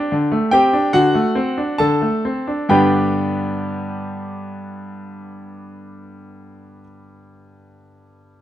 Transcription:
0.00 0.12 D4 medium
0.00 0.48 G4 medium
0.00 0.50 G5 loud
0.12 0.31 D3 medium
0.32 0.53 A3 medium
0.51 0.74 C4 medium
0.51 0.91 G4 medium
0.51 0.93 G5 loud
0.73 0.94 D4 medium
0.93 1.14 D3 medium
0.93 1.76 F#4 medium
0.93 1.75 F#5 loud
1.14 1.37 A3 medium
1.35 1.58 C4 medium
1.58 1.81 D4 medium
1.78 2.01 D3 medium
1.78 2.66 A4 medium
1.78 2.69 A5 medium
2.02 2.26 A3 medium
2.25 2.49 C4 medium
2.47 2.68 D4 medium
2.69 6.80 G2 medium
2.69 6.80 D3 medium
2.69 6.81 B3 medium
2.69 6.81 D4 medium
2.69 6.81 G4 medium
2.69 6.82 B4 medium
2.69 6.81 G5 medium

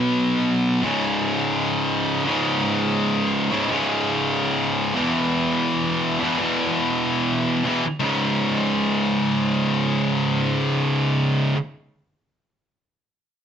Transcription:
0.00 0.82 B2 medium
0.00 0.83 F#3 loud
0.00 0.84 B3 loud
0.82 2.23 C#2 medium
0.82 2.25 G#2 loud
0.82 2.26 C#3 loud
2.24 3.49 C#2 medium
2.24 3.50 G#2 medium
2.24 3.49 C#3 loud
3.50 3.67 C#2 medium
3.50 3.69 G#2 medium
3.50 3.68 C#3 medium
3.68 4.93 C#2 medium
3.68 4.95 G#2 medium
3.68 4.95 C#3 medium
4.94 6.19 E2 medium
4.94 6.20 B2 medium
4.94 6.23 E3 medium
6.20 6.37 E2 medium
6.20 6.39 B2 medium
6.24 6.41 E3 medium
6.38 7.63 E2 medium
6.38 7.65 B2 medium
6.38 7.65 E3 medium
7.64 7.82 E2 medium
7.64 7.83 B2 medium
7.64 7.84 E3 medium
8.00 11.53 C#2 medium
8.00 11.55 G#2 medium
8.00 11.57 C#3 medium

